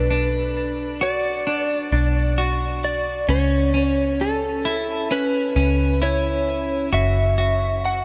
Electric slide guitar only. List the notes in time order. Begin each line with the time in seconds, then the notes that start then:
Already playing: B4
1.03 D5
2.85 D5
3.30 C#5
4.21 A4
5.12 B4
6.03 C#5
6.94 E5
7.85 F#5